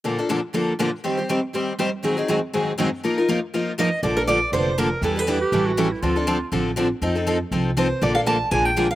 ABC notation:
X:1
M:4/4
L:1/8
Q:"Swing" 1/4=241
K:Bb
V:1 name="Steel-string acoustic guitar"
z8 | z8 | z8 | z6 e2 |
d B d2 c2 B2 | A =B6 z | z8 | z6 c2 |
d f a2 _a g2 f |]
V:2 name="Clarinet"
z8 | z8 | z8 | z8 |
z8 | z3 G2 _G2 =E | F4 z4 | z8 |
z8 |]
V:3 name="Steel-string acoustic guitar"
[B,,D,F,B,DA] [F,B,DA] [B,,D,F,B,DA] z [B,,D,F,B,DA] z [B,,D,F,B,DA] z | [E,G,CGc] [CGc] [E,G,CGc] z [E,G,CGc] z [E,G,CGc] z | [_A,,E,_G,CE_A] [G,CEA] [A,,E,G,CEA] z [A,,E,G,CEA] z [A,,E,G,CEA] z | [F,B,EFB] [EFB] [F,B,EFB] z [F,B,EFB] z [F,B,EFB] z |
[D,F,B,DA] [B,DA] [D,F,B,DA] z [D,F,B,DA] z [D,F,B,DA] z | [=E,=B,DG] [B,DG] [E,B,DG] z [E,G,^C=EA] z [E,G,CEA] z | [D,F,CDA] [CDA] [D,F,CDA] z [D,F,CDA] z [D,F,CDA] z | [F,CEA] [CEA] [F,CEA] z [F,CEA] z [F,CEA] z |
[D,F,B,DA] [B,DA] [D,F,B,DA] z [D,F,B,D_A] z [D,F,B,DA] z |]
V:4 name="Steel-string acoustic guitar"
[B,,D,F,B,DA] z [B,,D,F,B,DA] z [B,,D,F,B,DA] z [B,,D,F,B,DA] z | [E,G,CGc] z [E,G,CGc] z [E,G,CGc] z [E,G,CGc] z | [_A,,E,_G,CE_A] z [A,,E,G,CEA] z [A,,E,G,CEA] z [A,,E,G,CEA] z | [F,B,EFB] z [F,B,EFB] z [F,B,EFB] z [F,B,EFB] z |
[D,F,B,DA] z [D,F,B,DA] z [D,F,B,DA] z [D,F,B,DA] z | [=E,G,D=E=B] z [E,G,DEB] z [E,G,^CEA] z [E,G,CEA] z | [D,F,CDA] z [D,F,CDA] z [D,F,CDA] z [D,F,CDA] z | [F,CEA] z [F,CEA] z [F,CEA] z [F,CEA] z |
[D,F,B,DA] z [D,F,B,DA] z [F,_A,DFB] z [F,A,DFB] z |]
V:5 name="Upright bass" clef=bass
z8 | z8 | z8 | z8 |
B,,,4 F,,,4 | =E,,4 A,,,4 | D,,4 A,,,4 | F,,4 C,,4 |
B,,,4 B,,,4 |]